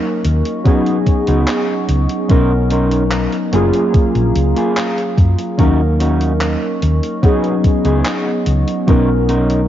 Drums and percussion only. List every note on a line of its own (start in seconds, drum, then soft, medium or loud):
0.25 closed hi-hat medium
0.45 closed hi-hat medium
0.65 kick loud
0.65 closed hi-hat medium
0.86 closed hi-hat soft
1.06 kick medium
1.06 closed hi-hat medium
1.27 closed hi-hat medium
1.48 clap loud
1.48 closed hi-hat medium
1.89 closed hi-hat medium
2.09 closed hi-hat medium
2.30 kick loud
2.30 closed hi-hat medium
2.71 closed hi-hat medium
2.91 closed hi-hat medium
3.11 clap loud
3.11 closed hi-hat medium
3.33 closed hi-hat soft
3.53 closed hi-hat medium
3.74 closed hi-hat medium
3.94 kick loud
3.94 closed hi-hat medium
4.15 closed hi-hat soft
4.35 closed hi-hat medium
4.56 closed hi-hat soft
4.77 clap loud
4.77 closed hi-hat medium
4.98 closed hi-hat soft
5.17 kick medium
5.17 closed hi-hat medium
5.38 closed hi-hat medium
5.59 kick loud
5.59 closed hi-hat medium
6.00 closed hi-hat medium
6.21 closed hi-hat soft
6.41 clap loud
6.41 closed hi-hat medium
6.82 closed hi-hat medium
7.03 closed hi-hat soft
7.23 kick loud
7.23 closed hi-hat medium
7.44 closed hi-hat soft
7.64 kick medium
7.64 closed hi-hat medium
7.85 closed hi-hat soft
8.05 clap loud
8.05 closed hi-hat medium
8.46 closed hi-hat medium
8.68 closed hi-hat soft
8.88 kick loud
8.88 closed hi-hat medium
9.29 closed hi-hat medium
9.50 closed hi-hat medium